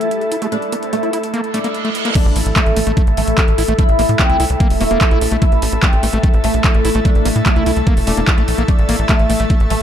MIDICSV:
0, 0, Header, 1, 10, 480
1, 0, Start_track
1, 0, Tempo, 408163
1, 612, Time_signature, 4, 2, 24, 8
1, 11553, End_track
2, 0, Start_track
2, 0, Title_t, "Analog synth pad"
2, 0, Program_c, 0, 89
2, 0, Note_on_c, 0, 69, 71
2, 0, Note_on_c, 0, 76, 91
2, 0, Note_on_c, 0, 81, 84
2, 11553, Note_off_c, 0, 69, 0
2, 11553, Note_off_c, 0, 76, 0
2, 11553, Note_off_c, 0, 81, 0
2, 11553, End_track
3, 0, Start_track
3, 0, Title_t, "Ambient pad"
3, 0, Program_c, 1, 92
3, 0, Note_on_c, 1, 57, 74
3, 0, Note_on_c, 1, 64, 75
3, 2518, Note_off_c, 1, 57, 0
3, 2518, Note_off_c, 1, 64, 0
3, 2532, Note_on_c, 1, 57, 74
3, 2532, Note_on_c, 1, 64, 75
3, 10212, Note_on_c, 1, 69, 73
3, 10236, Note_off_c, 1, 64, 0
3, 11553, Note_off_c, 1, 57, 0
3, 11553, Note_off_c, 1, 69, 0
3, 11553, End_track
4, 0, Start_track
4, 0, Title_t, "Oud"
4, 0, Program_c, 2, 24
4, 612, Note_on_c, 2, 62, 96
4, 875, Note_off_c, 2, 62, 0
4, 1092, Note_on_c, 2, 57, 92
4, 1290, Note_off_c, 2, 57, 0
4, 1812, Note_on_c, 2, 62, 95
4, 2010, Note_off_c, 2, 62, 0
4, 2532, Note_on_c, 2, 62, 98
4, 2795, Note_off_c, 2, 62, 0
4, 3012, Note_on_c, 2, 57, 97
4, 3209, Note_off_c, 2, 57, 0
4, 3732, Note_on_c, 2, 57, 96
4, 3930, Note_off_c, 2, 57, 0
4, 4452, Note_on_c, 2, 64, 99
4, 4716, Note_off_c, 2, 64, 0
4, 4932, Note_on_c, 2, 60, 96
4, 5130, Note_off_c, 2, 60, 0
4, 5652, Note_on_c, 2, 57, 96
4, 5849, Note_off_c, 2, 57, 0
4, 6372, Note_on_c, 2, 64, 95
4, 6635, Note_off_c, 2, 64, 0
4, 6851, Note_on_c, 2, 60, 92
4, 7049, Note_off_c, 2, 60, 0
4, 7571, Note_on_c, 2, 57, 94
4, 7769, Note_off_c, 2, 57, 0
4, 8291, Note_on_c, 2, 62, 98
4, 8555, Note_off_c, 2, 62, 0
4, 8772, Note_on_c, 2, 57, 94
4, 8970, Note_off_c, 2, 57, 0
4, 9492, Note_on_c, 2, 62, 93
4, 9689, Note_off_c, 2, 62, 0
4, 10212, Note_on_c, 2, 62, 96
4, 10475, Note_off_c, 2, 62, 0
4, 10692, Note_on_c, 2, 57, 92
4, 10890, Note_off_c, 2, 57, 0
4, 11412, Note_on_c, 2, 57, 97
4, 11553, Note_off_c, 2, 57, 0
4, 11553, End_track
5, 0, Start_track
5, 0, Title_t, "Acid bass"
5, 0, Program_c, 3, 38
5, 372, Note_on_c, 3, 64, 78
5, 431, Note_off_c, 3, 64, 0
5, 492, Note_on_c, 3, 57, 104
5, 551, Note_off_c, 3, 57, 0
5, 612, Note_on_c, 3, 57, 85
5, 671, Note_off_c, 3, 57, 0
5, 852, Note_on_c, 3, 58, 77
5, 888, Note_off_c, 3, 58, 0
5, 1092, Note_on_c, 3, 57, 82
5, 1128, Note_off_c, 3, 57, 0
5, 1212, Note_on_c, 3, 64, 75
5, 1301, Note_off_c, 3, 64, 0
5, 1332, Note_on_c, 3, 64, 79
5, 1391, Note_off_c, 3, 64, 0
5, 1571, Note_on_c, 3, 58, 101
5, 1660, Note_off_c, 3, 58, 0
5, 1812, Note_on_c, 3, 57, 102
5, 1871, Note_off_c, 3, 57, 0
5, 1932, Note_on_c, 3, 58, 100
5, 1967, Note_off_c, 3, 58, 0
5, 2172, Note_on_c, 3, 57, 75
5, 2231, Note_off_c, 3, 57, 0
5, 2412, Note_on_c, 3, 58, 76
5, 2471, Note_off_c, 3, 58, 0
5, 2532, Note_on_c, 3, 57, 84
5, 2567, Note_off_c, 3, 57, 0
5, 3012, Note_on_c, 3, 57, 85
5, 3071, Note_off_c, 3, 57, 0
5, 3252, Note_on_c, 3, 57, 105
5, 3287, Note_off_c, 3, 57, 0
5, 3372, Note_on_c, 3, 57, 105
5, 3431, Note_off_c, 3, 57, 0
5, 3492, Note_on_c, 3, 57, 85
5, 3551, Note_off_c, 3, 57, 0
5, 4211, Note_on_c, 3, 64, 79
5, 4271, Note_off_c, 3, 64, 0
5, 4331, Note_on_c, 3, 57, 106
5, 4391, Note_off_c, 3, 57, 0
5, 4451, Note_on_c, 3, 57, 83
5, 4511, Note_off_c, 3, 57, 0
5, 4691, Note_on_c, 3, 58, 76
5, 4727, Note_off_c, 3, 58, 0
5, 4931, Note_on_c, 3, 57, 85
5, 4967, Note_off_c, 3, 57, 0
5, 5051, Note_on_c, 3, 64, 76
5, 5140, Note_off_c, 3, 64, 0
5, 5171, Note_on_c, 3, 64, 79
5, 5231, Note_off_c, 3, 64, 0
5, 5411, Note_on_c, 3, 58, 100
5, 5500, Note_off_c, 3, 58, 0
5, 5651, Note_on_c, 3, 58, 79
5, 5687, Note_off_c, 3, 58, 0
5, 5771, Note_on_c, 3, 58, 102
5, 5860, Note_off_c, 3, 58, 0
5, 6012, Note_on_c, 3, 64, 77
5, 6101, Note_off_c, 3, 64, 0
5, 6251, Note_on_c, 3, 57, 103
5, 6311, Note_off_c, 3, 57, 0
5, 6371, Note_on_c, 3, 57, 85
5, 6407, Note_off_c, 3, 57, 0
5, 6852, Note_on_c, 3, 57, 87
5, 6911, Note_off_c, 3, 57, 0
5, 7092, Note_on_c, 3, 57, 107
5, 7127, Note_off_c, 3, 57, 0
5, 7212, Note_on_c, 3, 57, 107
5, 7271, Note_off_c, 3, 57, 0
5, 7332, Note_on_c, 3, 57, 83
5, 7391, Note_off_c, 3, 57, 0
5, 8052, Note_on_c, 3, 64, 77
5, 8111, Note_off_c, 3, 64, 0
5, 8172, Note_on_c, 3, 57, 107
5, 8231, Note_off_c, 3, 57, 0
5, 8292, Note_on_c, 3, 57, 85
5, 8351, Note_off_c, 3, 57, 0
5, 8532, Note_on_c, 3, 58, 81
5, 8568, Note_off_c, 3, 58, 0
5, 8772, Note_on_c, 3, 57, 86
5, 8807, Note_off_c, 3, 57, 0
5, 8892, Note_on_c, 3, 64, 76
5, 8981, Note_off_c, 3, 64, 0
5, 9012, Note_on_c, 3, 64, 79
5, 9071, Note_off_c, 3, 64, 0
5, 9252, Note_on_c, 3, 58, 102
5, 9341, Note_off_c, 3, 58, 0
5, 9492, Note_on_c, 3, 57, 102
5, 9551, Note_off_c, 3, 57, 0
5, 9612, Note_on_c, 3, 58, 103
5, 9648, Note_off_c, 3, 58, 0
5, 9852, Note_on_c, 3, 57, 75
5, 9911, Note_off_c, 3, 57, 0
5, 10092, Note_on_c, 3, 58, 78
5, 10151, Note_off_c, 3, 58, 0
5, 10212, Note_on_c, 3, 57, 83
5, 10248, Note_off_c, 3, 57, 0
5, 10452, Note_on_c, 3, 58, 103
5, 10540, Note_off_c, 3, 58, 0
5, 10692, Note_on_c, 3, 57, 85
5, 10751, Note_off_c, 3, 57, 0
5, 10932, Note_on_c, 3, 57, 101
5, 10967, Note_off_c, 3, 57, 0
5, 11052, Note_on_c, 3, 57, 107
5, 11111, Note_off_c, 3, 57, 0
5, 11172, Note_on_c, 3, 57, 84
5, 11231, Note_off_c, 3, 57, 0
5, 11553, End_track
6, 0, Start_track
6, 0, Title_t, "Wobble bass"
6, 0, Program_c, 4, 39
6, 12, Note_on_c, 4, 52, 91
6, 108, Note_off_c, 4, 52, 0
6, 132, Note_on_c, 4, 55, 91
6, 289, Note_off_c, 4, 55, 0
6, 492, Note_on_c, 4, 55, 89
6, 569, Note_off_c, 4, 55, 0
6, 612, Note_on_c, 4, 55, 81
6, 689, Note_off_c, 4, 55, 0
6, 972, Note_on_c, 4, 60, 97
6, 1332, Note_off_c, 4, 60, 0
6, 11553, End_track
7, 0, Start_track
7, 0, Title_t, "Analog synth bass"
7, 0, Program_c, 5, 38
7, 2652, Note_on_c, 5, 33, 89
7, 2724, Note_off_c, 5, 33, 0
7, 2772, Note_on_c, 5, 33, 100
7, 2844, Note_off_c, 5, 33, 0
7, 2892, Note_on_c, 5, 33, 94
7, 2964, Note_off_c, 5, 33, 0
7, 3132, Note_on_c, 5, 33, 88
7, 3204, Note_off_c, 5, 33, 0
7, 3252, Note_on_c, 5, 33, 98
7, 3323, Note_off_c, 5, 33, 0
7, 3372, Note_on_c, 5, 33, 92
7, 3443, Note_off_c, 5, 33, 0
7, 3612, Note_on_c, 5, 33, 87
7, 3683, Note_off_c, 5, 33, 0
7, 3732, Note_on_c, 5, 33, 102
7, 3803, Note_off_c, 5, 33, 0
7, 3852, Note_on_c, 5, 34, 92
7, 3923, Note_off_c, 5, 34, 0
7, 4092, Note_on_c, 5, 33, 87
7, 4164, Note_off_c, 5, 33, 0
7, 4211, Note_on_c, 5, 33, 96
7, 4283, Note_off_c, 5, 33, 0
7, 4332, Note_on_c, 5, 33, 93
7, 4403, Note_off_c, 5, 33, 0
7, 4571, Note_on_c, 5, 33, 89
7, 4643, Note_off_c, 5, 33, 0
7, 4692, Note_on_c, 5, 33, 104
7, 4763, Note_off_c, 5, 33, 0
7, 4812, Note_on_c, 5, 45, 95
7, 4883, Note_off_c, 5, 45, 0
7, 5052, Note_on_c, 5, 36, 86
7, 5123, Note_off_c, 5, 36, 0
7, 5172, Note_on_c, 5, 36, 99
7, 5244, Note_off_c, 5, 36, 0
7, 5292, Note_on_c, 5, 36, 95
7, 5364, Note_off_c, 5, 36, 0
7, 5532, Note_on_c, 5, 28, 85
7, 5603, Note_off_c, 5, 28, 0
7, 5652, Note_on_c, 5, 28, 99
7, 5724, Note_off_c, 5, 28, 0
7, 5772, Note_on_c, 5, 28, 93
7, 5844, Note_off_c, 5, 28, 0
7, 6012, Note_on_c, 5, 34, 88
7, 6084, Note_off_c, 5, 34, 0
7, 6132, Note_on_c, 5, 34, 98
7, 6204, Note_off_c, 5, 34, 0
7, 6252, Note_on_c, 5, 34, 92
7, 6324, Note_off_c, 5, 34, 0
7, 6492, Note_on_c, 5, 33, 84
7, 6564, Note_off_c, 5, 33, 0
7, 6612, Note_on_c, 5, 33, 102
7, 6684, Note_off_c, 5, 33, 0
7, 6732, Note_on_c, 5, 33, 93
7, 6804, Note_off_c, 5, 33, 0
7, 6972, Note_on_c, 5, 33, 88
7, 7043, Note_off_c, 5, 33, 0
7, 7092, Note_on_c, 5, 33, 101
7, 7163, Note_off_c, 5, 33, 0
7, 7212, Note_on_c, 5, 33, 93
7, 7283, Note_off_c, 5, 33, 0
7, 7452, Note_on_c, 5, 33, 85
7, 7523, Note_off_c, 5, 33, 0
7, 7572, Note_on_c, 5, 33, 103
7, 7644, Note_off_c, 5, 33, 0
7, 7692, Note_on_c, 5, 34, 94
7, 7763, Note_off_c, 5, 34, 0
7, 7932, Note_on_c, 5, 33, 87
7, 8004, Note_off_c, 5, 33, 0
7, 8052, Note_on_c, 5, 33, 99
7, 8123, Note_off_c, 5, 33, 0
7, 8172, Note_on_c, 5, 33, 93
7, 8244, Note_off_c, 5, 33, 0
7, 8411, Note_on_c, 5, 33, 84
7, 8483, Note_off_c, 5, 33, 0
7, 8532, Note_on_c, 5, 33, 101
7, 8604, Note_off_c, 5, 33, 0
7, 8652, Note_on_c, 5, 45, 94
7, 8724, Note_off_c, 5, 45, 0
7, 8892, Note_on_c, 5, 36, 86
7, 8964, Note_off_c, 5, 36, 0
7, 9012, Note_on_c, 5, 36, 97
7, 9084, Note_off_c, 5, 36, 0
7, 9132, Note_on_c, 5, 36, 96
7, 9204, Note_off_c, 5, 36, 0
7, 9372, Note_on_c, 5, 28, 87
7, 9444, Note_off_c, 5, 28, 0
7, 9492, Note_on_c, 5, 28, 97
7, 9564, Note_off_c, 5, 28, 0
7, 9613, Note_on_c, 5, 28, 95
7, 9684, Note_off_c, 5, 28, 0
7, 9852, Note_on_c, 5, 34, 87
7, 9924, Note_off_c, 5, 34, 0
7, 9972, Note_on_c, 5, 34, 99
7, 10044, Note_off_c, 5, 34, 0
7, 10093, Note_on_c, 5, 34, 91
7, 10164, Note_off_c, 5, 34, 0
7, 10333, Note_on_c, 5, 33, 89
7, 10404, Note_off_c, 5, 33, 0
7, 10453, Note_on_c, 5, 33, 103
7, 10524, Note_off_c, 5, 33, 0
7, 10573, Note_on_c, 5, 33, 97
7, 10644, Note_off_c, 5, 33, 0
7, 10813, Note_on_c, 5, 33, 87
7, 10884, Note_off_c, 5, 33, 0
7, 10933, Note_on_c, 5, 33, 101
7, 11004, Note_off_c, 5, 33, 0
7, 11053, Note_on_c, 5, 33, 92
7, 11124, Note_off_c, 5, 33, 0
7, 11292, Note_on_c, 5, 33, 85
7, 11364, Note_off_c, 5, 33, 0
7, 11412, Note_on_c, 5, 33, 101
7, 11484, Note_off_c, 5, 33, 0
7, 11553, End_track
8, 0, Start_track
8, 0, Title_t, "Impact"
8, 0, Program_c, 6, 103
8, 2532, Note_on_c, 6, 60, 75
8, 4452, Note_off_c, 6, 60, 0
8, 11553, End_track
9, 0, Start_track
9, 0, Title_t, "Reverse cymbal"
9, 0, Program_c, 7, 119
9, 1572, Note_on_c, 7, 60, 76
9, 2532, Note_off_c, 7, 60, 0
9, 11553, End_track
10, 0, Start_track
10, 0, Title_t, "Drums"
10, 12, Note_on_c, 9, 42, 48
10, 129, Note_off_c, 9, 42, 0
10, 132, Note_on_c, 9, 42, 49
10, 249, Note_off_c, 9, 42, 0
10, 252, Note_on_c, 9, 42, 24
10, 369, Note_off_c, 9, 42, 0
10, 372, Note_on_c, 9, 42, 89
10, 489, Note_off_c, 9, 42, 0
10, 492, Note_on_c, 9, 42, 49
10, 609, Note_off_c, 9, 42, 0
10, 612, Note_on_c, 9, 42, 50
10, 729, Note_off_c, 9, 42, 0
10, 732, Note_on_c, 9, 42, 25
10, 849, Note_off_c, 9, 42, 0
10, 852, Note_on_c, 9, 42, 85
10, 969, Note_off_c, 9, 42, 0
10, 972, Note_on_c, 9, 42, 47
10, 1089, Note_off_c, 9, 42, 0
10, 1092, Note_on_c, 9, 42, 50
10, 1209, Note_off_c, 9, 42, 0
10, 1212, Note_on_c, 9, 42, 24
10, 1329, Note_off_c, 9, 42, 0
10, 1332, Note_on_c, 9, 42, 85
10, 1449, Note_off_c, 9, 42, 0
10, 1452, Note_on_c, 9, 42, 47
10, 1569, Note_off_c, 9, 42, 0
10, 1572, Note_on_c, 9, 42, 50
10, 1689, Note_off_c, 9, 42, 0
10, 1692, Note_on_c, 9, 42, 25
10, 1809, Note_off_c, 9, 42, 0
10, 1812, Note_on_c, 9, 42, 85
10, 1929, Note_off_c, 9, 42, 0
10, 1932, Note_on_c, 9, 42, 48
10, 2049, Note_off_c, 9, 42, 0
10, 2052, Note_on_c, 9, 42, 47
10, 2169, Note_off_c, 9, 42, 0
10, 2172, Note_on_c, 9, 42, 24
10, 2290, Note_off_c, 9, 42, 0
10, 2292, Note_on_c, 9, 42, 86
10, 2410, Note_off_c, 9, 42, 0
10, 2412, Note_on_c, 9, 42, 48
10, 2530, Note_off_c, 9, 42, 0
10, 2532, Note_on_c, 9, 36, 124
10, 2532, Note_on_c, 9, 42, 58
10, 2532, Note_on_c, 9, 49, 108
10, 2650, Note_off_c, 9, 36, 0
10, 2650, Note_off_c, 9, 42, 0
10, 2650, Note_off_c, 9, 49, 0
10, 2652, Note_on_c, 9, 42, 28
10, 2770, Note_off_c, 9, 42, 0
10, 2772, Note_on_c, 9, 46, 110
10, 2890, Note_off_c, 9, 46, 0
10, 2892, Note_on_c, 9, 42, 55
10, 3010, Note_off_c, 9, 42, 0
10, 3012, Note_on_c, 9, 36, 114
10, 3012, Note_on_c, 9, 39, 127
10, 3012, Note_on_c, 9, 42, 56
10, 3130, Note_off_c, 9, 36, 0
10, 3130, Note_off_c, 9, 39, 0
10, 3130, Note_off_c, 9, 42, 0
10, 3132, Note_on_c, 9, 42, 28
10, 3249, Note_off_c, 9, 42, 0
10, 3252, Note_on_c, 9, 46, 108
10, 3369, Note_off_c, 9, 46, 0
10, 3372, Note_on_c, 9, 42, 55
10, 3489, Note_off_c, 9, 42, 0
10, 3492, Note_on_c, 9, 36, 122
10, 3492, Note_on_c, 9, 42, 54
10, 3609, Note_off_c, 9, 42, 0
10, 3610, Note_off_c, 9, 36, 0
10, 3612, Note_on_c, 9, 42, 29
10, 3729, Note_off_c, 9, 42, 0
10, 3732, Note_on_c, 9, 46, 104
10, 3849, Note_off_c, 9, 46, 0
10, 3852, Note_on_c, 9, 42, 55
10, 3969, Note_off_c, 9, 42, 0
10, 3972, Note_on_c, 9, 36, 122
10, 3972, Note_on_c, 9, 39, 124
10, 3972, Note_on_c, 9, 42, 56
10, 4089, Note_off_c, 9, 39, 0
10, 4089, Note_off_c, 9, 42, 0
10, 4090, Note_off_c, 9, 36, 0
10, 4092, Note_on_c, 9, 42, 28
10, 4209, Note_off_c, 9, 42, 0
10, 4211, Note_on_c, 9, 46, 110
10, 4329, Note_off_c, 9, 46, 0
10, 4332, Note_on_c, 9, 42, 55
10, 4449, Note_off_c, 9, 42, 0
10, 4452, Note_on_c, 9, 36, 126
10, 4452, Note_on_c, 9, 42, 55
10, 4569, Note_off_c, 9, 42, 0
10, 4570, Note_off_c, 9, 36, 0
10, 4572, Note_on_c, 9, 42, 28
10, 4689, Note_off_c, 9, 42, 0
10, 4691, Note_on_c, 9, 46, 110
10, 4809, Note_off_c, 9, 46, 0
10, 4812, Note_on_c, 9, 42, 54
10, 4929, Note_off_c, 9, 42, 0
10, 4932, Note_on_c, 9, 36, 121
10, 4932, Note_on_c, 9, 39, 124
10, 4932, Note_on_c, 9, 42, 54
10, 5049, Note_off_c, 9, 39, 0
10, 5049, Note_off_c, 9, 42, 0
10, 5050, Note_off_c, 9, 36, 0
10, 5052, Note_on_c, 9, 42, 27
10, 5169, Note_off_c, 9, 42, 0
10, 5172, Note_on_c, 9, 46, 116
10, 5289, Note_off_c, 9, 46, 0
10, 5292, Note_on_c, 9, 42, 53
10, 5409, Note_off_c, 9, 42, 0
10, 5412, Note_on_c, 9, 36, 125
10, 5412, Note_on_c, 9, 42, 55
10, 5529, Note_off_c, 9, 42, 0
10, 5530, Note_off_c, 9, 36, 0
10, 5532, Note_on_c, 9, 46, 65
10, 5650, Note_off_c, 9, 46, 0
10, 5652, Note_on_c, 9, 46, 108
10, 5769, Note_off_c, 9, 46, 0
10, 5772, Note_on_c, 9, 42, 53
10, 5890, Note_off_c, 9, 42, 0
10, 5892, Note_on_c, 9, 36, 126
10, 5892, Note_on_c, 9, 39, 124
10, 5892, Note_on_c, 9, 42, 52
10, 6009, Note_off_c, 9, 39, 0
10, 6009, Note_off_c, 9, 42, 0
10, 6010, Note_off_c, 9, 36, 0
10, 6012, Note_on_c, 9, 42, 27
10, 6129, Note_off_c, 9, 42, 0
10, 6132, Note_on_c, 9, 46, 115
10, 6249, Note_off_c, 9, 46, 0
10, 6372, Note_on_c, 9, 36, 127
10, 6372, Note_on_c, 9, 42, 54
10, 6489, Note_off_c, 9, 42, 0
10, 6490, Note_off_c, 9, 36, 0
10, 6492, Note_on_c, 9, 42, 27
10, 6609, Note_off_c, 9, 42, 0
10, 6612, Note_on_c, 9, 46, 111
10, 6729, Note_off_c, 9, 46, 0
10, 6732, Note_on_c, 9, 42, 52
10, 6849, Note_off_c, 9, 42, 0
10, 6851, Note_on_c, 9, 39, 120
10, 6851, Note_on_c, 9, 42, 51
10, 6852, Note_on_c, 9, 36, 121
10, 6969, Note_off_c, 9, 39, 0
10, 6969, Note_off_c, 9, 42, 0
10, 6970, Note_off_c, 9, 36, 0
10, 6972, Note_on_c, 9, 42, 26
10, 7089, Note_off_c, 9, 42, 0
10, 7091, Note_on_c, 9, 46, 114
10, 7209, Note_off_c, 9, 46, 0
10, 7211, Note_on_c, 9, 42, 52
10, 7329, Note_off_c, 9, 42, 0
10, 7332, Note_on_c, 9, 36, 127
10, 7332, Note_on_c, 9, 42, 51
10, 7449, Note_off_c, 9, 36, 0
10, 7449, Note_off_c, 9, 42, 0
10, 7452, Note_on_c, 9, 42, 26
10, 7569, Note_off_c, 9, 42, 0
10, 7572, Note_on_c, 9, 46, 112
10, 7689, Note_off_c, 9, 46, 0
10, 7692, Note_on_c, 9, 42, 50
10, 7809, Note_off_c, 9, 42, 0
10, 7812, Note_on_c, 9, 36, 127
10, 7812, Note_on_c, 9, 39, 123
10, 7812, Note_on_c, 9, 42, 51
10, 7929, Note_off_c, 9, 39, 0
10, 7929, Note_off_c, 9, 42, 0
10, 7930, Note_off_c, 9, 36, 0
10, 7932, Note_on_c, 9, 42, 27
10, 8049, Note_off_c, 9, 42, 0
10, 8052, Note_on_c, 9, 46, 113
10, 8169, Note_off_c, 9, 46, 0
10, 8172, Note_on_c, 9, 42, 50
10, 8289, Note_off_c, 9, 42, 0
10, 8292, Note_on_c, 9, 36, 123
10, 8292, Note_on_c, 9, 42, 52
10, 8409, Note_off_c, 9, 36, 0
10, 8410, Note_off_c, 9, 42, 0
10, 8412, Note_on_c, 9, 42, 26
10, 8529, Note_off_c, 9, 42, 0
10, 8532, Note_on_c, 9, 46, 109
10, 8649, Note_off_c, 9, 46, 0
10, 8652, Note_on_c, 9, 42, 51
10, 8770, Note_off_c, 9, 42, 0
10, 8772, Note_on_c, 9, 36, 124
10, 8772, Note_on_c, 9, 39, 118
10, 8772, Note_on_c, 9, 42, 50
10, 8889, Note_off_c, 9, 39, 0
10, 8889, Note_off_c, 9, 42, 0
10, 8890, Note_off_c, 9, 36, 0
10, 8892, Note_on_c, 9, 42, 25
10, 9010, Note_off_c, 9, 42, 0
10, 9012, Note_on_c, 9, 46, 110
10, 9129, Note_off_c, 9, 46, 0
10, 9132, Note_on_c, 9, 42, 50
10, 9250, Note_off_c, 9, 42, 0
10, 9252, Note_on_c, 9, 36, 126
10, 9252, Note_on_c, 9, 42, 51
10, 9370, Note_off_c, 9, 36, 0
10, 9370, Note_off_c, 9, 42, 0
10, 9372, Note_on_c, 9, 46, 65
10, 9490, Note_off_c, 9, 46, 0
10, 9492, Note_on_c, 9, 46, 109
10, 9609, Note_off_c, 9, 46, 0
10, 9612, Note_on_c, 9, 42, 51
10, 9730, Note_off_c, 9, 42, 0
10, 9732, Note_on_c, 9, 36, 126
10, 9732, Note_on_c, 9, 39, 114
10, 9732, Note_on_c, 9, 42, 50
10, 9850, Note_off_c, 9, 36, 0
10, 9850, Note_off_c, 9, 39, 0
10, 9850, Note_off_c, 9, 42, 0
10, 9852, Note_on_c, 9, 42, 26
10, 9970, Note_off_c, 9, 42, 0
10, 9972, Note_on_c, 9, 46, 112
10, 10090, Note_off_c, 9, 46, 0
10, 10092, Note_on_c, 9, 42, 51
10, 10210, Note_off_c, 9, 42, 0
10, 10212, Note_on_c, 9, 36, 125
10, 10212, Note_on_c, 9, 42, 54
10, 10330, Note_off_c, 9, 36, 0
10, 10330, Note_off_c, 9, 42, 0
10, 10332, Note_on_c, 9, 42, 26
10, 10450, Note_off_c, 9, 42, 0
10, 10452, Note_on_c, 9, 46, 107
10, 10570, Note_off_c, 9, 46, 0
10, 10572, Note_on_c, 9, 42, 52
10, 10690, Note_off_c, 9, 42, 0
10, 10692, Note_on_c, 9, 36, 121
10, 10692, Note_on_c, 9, 39, 114
10, 10692, Note_on_c, 9, 42, 53
10, 10810, Note_off_c, 9, 36, 0
10, 10810, Note_off_c, 9, 39, 0
10, 10810, Note_off_c, 9, 42, 0
10, 10812, Note_on_c, 9, 42, 26
10, 10930, Note_off_c, 9, 42, 0
10, 10932, Note_on_c, 9, 46, 107
10, 11050, Note_off_c, 9, 46, 0
10, 11052, Note_on_c, 9, 42, 51
10, 11170, Note_off_c, 9, 42, 0
10, 11172, Note_on_c, 9, 36, 120
10, 11172, Note_on_c, 9, 42, 53
10, 11290, Note_off_c, 9, 36, 0
10, 11290, Note_off_c, 9, 42, 0
10, 11292, Note_on_c, 9, 42, 26
10, 11410, Note_off_c, 9, 42, 0
10, 11412, Note_on_c, 9, 46, 106
10, 11530, Note_off_c, 9, 46, 0
10, 11553, End_track
0, 0, End_of_file